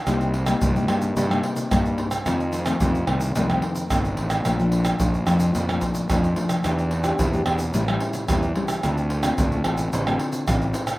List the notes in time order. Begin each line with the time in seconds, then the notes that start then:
0.06 C2 C3 G3 A#3 D#4, pandeiro, tamborim, shaker, surdo
0.21 pandeiro, shaker
0.34 pandeiro
0.46 G3 A#3 D#4, pandeiro, tamborim, shaker
0.61 C2 G2, pandeiro, shaker, surdo
0.75 G3 A#3 D#4, pandeiro, shaker
0.88 G2 G3 A#3 D#4, pandeiro, tamborim
1.02 pandeiro, shaker
1.16 G2 C3, pandeiro, shaker, surdo
1.30 G3 A#3 D#4, pandeiro, tamborim, shaker
1.43 pandeiro
1.56 pandeiro, shaker
1.71 G2 G3 A#3 D#4, pandeiro, tamborim, shaker, surdo
1.85 pandeiro, shaker
1.98 pandeiro
2.11 pandeiro, tamborim, shaker
2.26 F2 D#3 A3 C4, pandeiro, tamborim, shaker, surdo
2.40 pandeiro, shaker
2.53 pandeiro, shaker
2.66 D#3 A3 C4, pandeiro, tamborim, shaker
2.80 F2 C3 D#3 A3 C4, pandeiro, shaker, surdo
2.95 pandeiro, shaker
3.07 C2 D#3 A3 C4, pandeiro, tamborim
3.20 pandeiro, shaker
3.35 C2 F2 D#3 A3 C4, pandeiro, shaker, surdo
3.50 D#3 A3 C4, pandeiro, tamborim, shaker
3.62 pandeiro
3.75 pandeiro, shaker
3.90 G1 C3 D#3 A3 C4, pandeiro, tamborim, shaker, surdo
4.05 pandeiro, shaker
4.17 A1, pandeiro
4.30 pandeiro, tamborim, shaker
4.45 A#1 A#2 F3 A3 D4, pandeiro, tamborim, shaker, surdo
4.60 F3 A3 D4, pandeiro, shaker
4.72 pandeiro
4.85 pandeiro, tamborim, shaker
5.00 A#1 F2 F3 A3 D4, pandeiro, shaker, surdo
5.14 pandeiro, shaker
5.27 F2 F3 A3 D4, pandeiro, tamborim, shaker
5.40 pandeiro, shaker
5.55 F2 A#2, pandeiro, shaker, surdo
5.69 F3 A3 D4, pandeiro, tamborim, shaker
5.81 pandeiro, shaker, surdo
5.95 pandeiro, shaker
6.10 F2 F3 A3 D4, pandeiro, tamborim, shaker, surdo
6.24 pandeiro, shaker
6.36 F3 A3 D4, pandeiro
6.49 pandeiro, tamborim, shaker
6.64 E2 E3 B3 D4 G4, pandeiro, tamborim, shaker, surdo
6.79 pandeiro, shaker
6.91 pandeiro
7.04 B3 D4 G4, pandeiro, tamborim, shaker
7.19 E2 B2, pandeiro, shaker, surdo
7.33 B3 D4 G4, pandeiro, shaker
7.46 E2 B3 D4 G4, pandeiro, tamborim
7.59 pandeiro, shaker
7.74 A1 A2 G3 C#4 E4, pandeiro, shaker, surdo
7.88 G3 C#4 E4, pandeiro, tamborim, shaker
8.00 pandeiro
8.13 pandeiro, shaker
8.28 E2 E3 G3 C#4 E4, pandeiro, tamborim, shaker, surdo
8.43 pandeiro, shaker
8.55 G3 C#4 E4, pandeiro
8.68 pandeiro, tamborim, shaker
8.83 D2 D3 C4 F4 A4, pandeiro, tamborim, shaker, surdo
8.98 pandeiro, shaker
9.10 pandeiro
9.23 C4 F4 A4, pandeiro, tamborim, shaker
9.38 D2 A2, pandeiro, shaker, surdo
9.52 C4 F4 A4, pandeiro, shaker
9.64 A1 C4 F4 A4, pandeiro, tamborim
9.78 pandeiro, shaker
9.93 A1 D3, pandeiro, shaker, surdo
10.07 C4 F4 A4, pandeiro, tamborim, shaker
10.19 pandeiro
10.33 pandeiro, shaker
10.48 A1 A2 C4 F4 A4, pandeiro, tamborim, shaker, surdo
10.62 pandeiro, shaker
10.74 pandeiro, shaker
10.87 pandeiro, tamborim, shaker